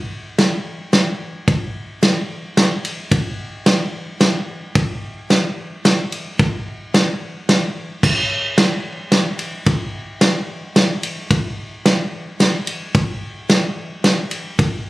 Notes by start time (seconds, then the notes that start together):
0.38 snare, ride
0.93 snare, ride
1.48 kick, ride
2.03 snare, ride
2.57 snare, ride
2.85 ride
3.11 kick, ride
3.66 snare, ride
4.21 snare, ride
4.75 kick, ride
5.30 snare, ride
5.85 snare, ride
6.12 ride
6.39 kick, ride
6.94 snare, ride
7.49 snare, ride
8.03 kick, crash
8.58 snare, ride
9.12 snare, ride
9.39 ride
9.66 kick, ride
10.21 snare, ride
10.76 snare, ride
11.03 ride
11.31 kick, ride
11.86 snare, ride
12.40 snare, ride
12.67 ride
12.95 kick, ride
13.50 snare, ride
14.04 snare, ride
14.31 ride
14.59 kick, ride